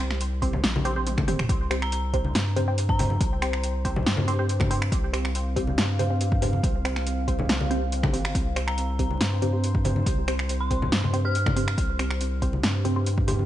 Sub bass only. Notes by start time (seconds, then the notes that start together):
Already playing: C2
0.64 A#1
1.49 C2
2.35 G2
3.21 C2
4.06 G2
4.92 C2
5.78 G2
6.63 C2
7.49 C2
8.35 C2
9.21 G2
10.06 C2
10.92 G2
11.78 C2
12.63 G2